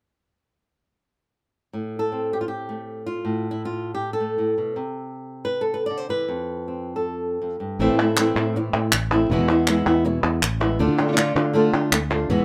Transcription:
1.73 A2
1.99 A4
2.12 C4
2.33 G4
2.41 F4
2.48 G4
2.69 A3
3.06 F4
3.25 A2
3.51 E4
3.65 F4
3.94 G4
4.13 A4
4.20 A3
4.38 A2
4.58 B2
4.76 C3
5.45 B4
5.61 A4
5.74 B4
5.86 D5
5.90 D3
5.97 C5
6.09 E3 B4
6.28 F2
6.68 C4
6.96 A4
7.42 F2
7.60 G2
7.79 A1 E3 A3 C4 E4
7.89 A2
7.99 A3 C4 E4
8.17 E3 A3 C4 E4, muted nylon-string guitar stroke, clap
8.36 A2 A3 C4 E4
8.55 E3 A3 C4 E4, muted nylon-string guitar stroke
8.73 A2 A3 C4 E4
8.92 A1, muted nylon-string guitar stroke, clap
9.13 A3 C4 E4
9.30 E1 B2 E3 G#3 B3 E4
9.39 E2
9.49 G#3 B3 E4
9.67 E3 G#3 B3 E4, muted nylon-string guitar stroke, clap
9.86 E2 G#3 B3 E4
10.05 B2 E3 G#3 B3 E4, muted nylon-string guitar stroke
10.23 E2 G#3 B3 E4
10.42 A1, muted nylon-string guitar stroke, clap
10.60 G#3 B3 E4
10.79 D2 D3 A3 D4 F4, muted nylon-string guitar stroke
10.88 D3
10.98 A3 D4 F4
11.08 D3 A3 D4 F4
11.12 D3 A3 D4 F4
11.17 D3 A3 D4 F4, muted nylon-string guitar stroke, clap
11.36 D3 A3 D4 F4
11.54 D3 A3 D4 F4
11.73 D3 A3 D4 F4
11.92 D2, muted nylon-string guitar stroke, clap
12.10 A3 D4 F4
12.29 E2 B2 E3 G#3 B3 E4, muted nylon-string guitar stroke
12.39 E3

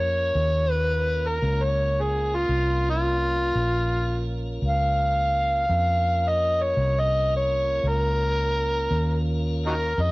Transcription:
Already playing: F2 A#3 C#4 F4 A#4 C#5
0.35 D#2
0.71 B4
1.28 A#4
1.41 C#2 A#3 C#4 F4 A#4
1.65 C#5
2.02 G#4
2.36 F4
2.49 C2
2.90 F4
3.55 A#1
4.62 C#2
4.68 F5
5.68 F2 A#3 C#4 F4 A#4
6.29 D#5
6.63 C#5
6.77 C2
7.00 D#5
7.37 C#5
7.84 C#2
7.89 A#4
8.91 D#2
9.66 D#4 F#4 A#4
9.97 F2 C#4 E4 G4 A#4
10.02 D#5

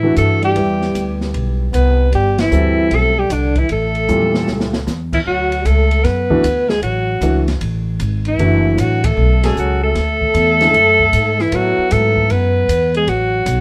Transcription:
Already playing: A2 E3 E4
0.03 E3 A3 D4 F#4
0.16 G2 A3 A4, hi-hat pedal, ride
0.42 G3 G4, ride
0.56 E2 G3 B3 E4 G4, ride
0.82 snare
0.95 D2, hi-hat pedal, ride
1.21 snare
1.34 B1, ride
1.73 C2 B3 B4, hi-hat pedal, ride
2.12 G1 G3 G4, ride
2.38 E3 E4, snare, ride
2.51 D2 G3 C4 F#4 A4, hi-hat pedal
2.91 B1 A3 A4, ride
3.18 G3 G4
3.30 C2 D3 D4, hi-hat pedal, ride
3.55 E3 E4, kick, ride
3.69 A1 A3 A4, ride
3.95 ride
4.08 E2 A#2 G3 C#4 E4, hi-hat pedal, high tom
4.21 high tom
4.34 snare
4.47 C#2, snare
4.60 snare
4.73 snare
4.87 E2, snare, hi-hat pedal
5.12 E3 E4, kick, crash
5.25 D2 F#3 F#4
5.52 ride
5.65 C#2 A3 A4, hi-hat pedal, ride
5.91 ride
6.03 F#2 B3 B4, snare, ride
6.30 E3 A3 D4 F#4, kick
6.43 D2, hi-hat pedal, ride
6.69 G#3 G#4, snare
6.82 A1 F#3 F#4, ride
7.21 C#2 E3 A3 D4 F#4, hi-hat pedal, ride
7.48 snare, ride
7.61 A1, ride
8.00 G#1, hi-hat pedal, ride
8.25 E3 E4, ride
8.39 F#1 E3 A3 D4 F#4, ride
8.78 A1 F#3 F#4, hi-hat pedal, ride
9.04 A3 A4, kick, ride
9.17 B1
9.43 G#3 C#4 F#4 G#4 A4, snare, ride
9.55 C#2 F#3 F#4, hi-hat pedal
9.83 A3 A4
9.95 D2, snare, ride
10.21 kick
10.34 E2, hi-hat pedal, ride
10.61 D3 G#3 C#4 E4, snare, ride
10.74 F#2, ride
10.99 kick
11.13 G#2, hi-hat pedal, ride
11.39 E3 E4, snare
11.52 A2 F#3 B3 E4 F#4 A4, ride
11.78 muted upright bass stroke
11.91 G#2 A3 A4, hi-hat pedal, ride
12.16 kick
12.30 F#2 B3 B4, ride
12.68 E2, hi-hat pedal, ride
12.94 G#3 G#4, ride
13.07 A1 F#3 F#4, ride
13.46 B1, hi-hat pedal, ride

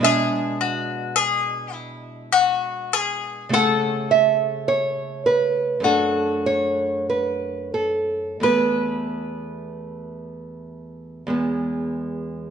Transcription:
0.00 B2 G#3 D4 E5
0.04 G#4
0.61 F#4
1.16 G#4
1.73 E4
2.32 F#4
2.93 G#4
3.49 C#3 A3 C#4
3.53 A4 F#5
4.11 E5
4.68 C#5
5.26 B4
5.80 F#2 A3 D4 F#4
5.85 A4
6.46 C#5
7.10 B4
7.74 A4
8.40 E2 A3 B3 B4
11.27 E2 G#3 B3

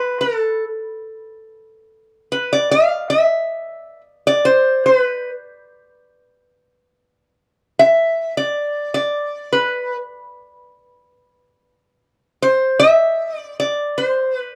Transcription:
Already playing: B4
0.21 A4
2.32 B4
2.53 D5
2.71 F5
3.10 E5
4.27 D5
4.45 C5
4.86 B4
7.79 E5
8.37 D5
8.94 D5
9.53 B4
12.42 C5
12.80 E5
13.39 D5
13.60 D5
13.98 C5
14.37 B4

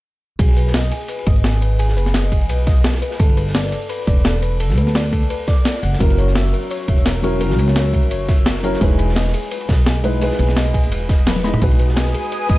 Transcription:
0.39 B1 G#4, kick, closed hi-hat, ride
0.48 ride
0.57 B4, closed hi-hat, ride
0.67 snare
0.74 D#5, snare, closed hi-hat, open hi-hat
0.83 snare, closed hi-hat
0.91 G#4, closed hi-hat, ride
1.01 closed hi-hat
1.08 B4, closed hi-hat, ride
1.19 ride
1.26 G#1 D#5, kick, closed hi-hat, ride
1.36 closed hi-hat
1.44 G#4, snare, closed hi-hat, ride
1.62 B4, closed hi-hat, ride
1.79 G#4, closed hi-hat, ride
1.88 snare
1.97 F#1 B4, closed hi-hat, ride
2.06 snare
2.14 D#5, snare, closed hi-hat, ride
2.24 closed hi-hat
2.32 G#4, kick, closed hi-hat, ride
2.41 closed hi-hat
2.49 B1 B4, closed hi-hat, ride
2.67 D#5, kick, snare, closed hi-hat, ride
2.76 closed hi-hat
2.84 G#4, snare, closed hi-hat, ride
2.94 snare
3.02 B4, closed hi-hat, ride
3.11 snare
3.20 G1 A4, kick, closed hi-hat, ride
3.29 ride
3.37 B4, closed hi-hat, ride
3.47 snare
3.55 D5, snare, closed hi-hat, open hi-hat
3.64 snare, closed hi-hat
3.72 A4, closed hi-hat, ride
3.82 closed hi-hat
3.89 B4, closed hi-hat, ride
3.99 ride
4.07 E1 D5, kick, closed hi-hat, ride
4.17 closed hi-hat
4.25 A4, snare, closed hi-hat, ride
4.42 B4, closed hi-hat, ride
4.60 A4, closed hi-hat, ride
4.70 snare
4.77 D2 B4, closed hi-hat, ride
4.87 snare
4.95 D5, snare, closed hi-hat, ride
5.05 closed hi-hat
5.13 A4, kick, closed hi-hat, ride
5.22 closed hi-hat
5.30 B4, closed hi-hat, ride
5.47 D5, kick, snare, closed hi-hat, ride
5.57 closed hi-hat
5.65 D5, snare, closed hi-hat, ride
5.75 snare
5.83 F#1 F#5, closed hi-hat, ride
5.93 snare
5.99 F#1 F#3 C#4 E4 A#4, kick, closed hi-hat, ride
6.10 ride
6.18 C#5, closed hi-hat, ride
6.27 snare
6.35 E5, snare, closed hi-hat, open hi-hat
6.45 snare, closed hi-hat
6.53 A#4, closed hi-hat, ride
6.63 closed hi-hat
6.71 C#5, closed hi-hat, ride
6.79 ride
6.88 E1 E5, kick, closed hi-hat, ride
6.98 closed hi-hat
7.06 A#4, snare, closed hi-hat, ride
7.22 F#3 C#4 E4 A#4 C#5, closed hi-hat, ride
7.39 F#3 C#4 E4 A#4, closed hi-hat, ride
7.50 snare
7.58 C#2 C#5, closed hi-hat, ride
7.68 snare
7.76 E5, snare, closed hi-hat, ride
7.85 closed hi-hat
7.93 A#4, kick, closed hi-hat, ride
8.03 closed hi-hat
8.11 F#1 C#5, closed hi-hat, ride
8.28 E5, kick, snare, closed hi-hat, ride
8.38 closed hi-hat
8.46 A#4, snare, closed hi-hat, ride
8.55 snare
8.63 F#3 C#4 E4 A#4 C#5, closed hi-hat, ride
8.73 snare
8.79 E1 G#3 D#4 E4 G#4 B4, kick, closed hi-hat, ride
8.91 ride
8.99 B4, closed hi-hat, ride
9.09 snare
9.16 D#5, snare, closed hi-hat, open hi-hat
9.26 snare, closed hi-hat
9.34 G#4, closed hi-hat, ride
9.43 closed hi-hat
9.51 B4, closed hi-hat, ride
9.61 ride
9.69 B1 D#5, kick, snare, closed hi-hat, open hi-hat
9.78 closed hi-hat
9.86 G#4, snare, closed hi-hat, open hi-hat
10.03 G#3 D#4 E4 B4, closed hi-hat, ride
10.20 G#3 D#4 E4 G#4 B4, closed hi-hat, ride
10.31 snare
10.39 B1 B4, closed hi-hat, ride
10.49 snare
10.57 D#5, snare, closed hi-hat, ride
10.66 closed hi-hat
10.74 G#4, kick, closed hi-hat, ride
10.84 closed hi-hat
10.92 E1 B4, closed hi-hat, ride
11.09 D#5, kick, snare, closed hi-hat, ride
11.19 closed hi-hat
11.26 B4, snare, closed hi-hat, open hi-hat, high tom
11.36 snare, high tom
11.44 G#3 D#4 E4 D#5 B5, snare, closed hi-hat
11.54 mid tom
11.60 B1 G#3 D#4 F#4 G#4 B4 G#5 D#6, kick, closed hi-hat, ride
11.71 ride
11.79 B4, closed hi-hat, ride
11.88 snare
11.97 D#5, snare, closed hi-hat, open hi-hat
12.06 snare, closed hi-hat
12.14 G#4, closed hi-hat, ride
12.24 closed hi-hat
12.32 B4, closed hi-hat, ride
12.41 ride
12.49 G#1 D#5, kick, closed hi-hat, ride

